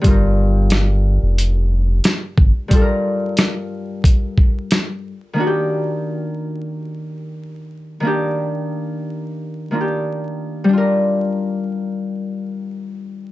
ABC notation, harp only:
X:1
M:4/4
L:1/8
Q:"Swing 16ths" 1/4=90
K:Gm
V:1 name="Harp"
[G,,G,FB]8 | [G,,G,FAB]6- [G,,G,FAB] z | [E,B,D^FG]8 | [E,B,DG]4- [E,B,DG] [E,B,DFG]3 |
[G,DFB]8 |]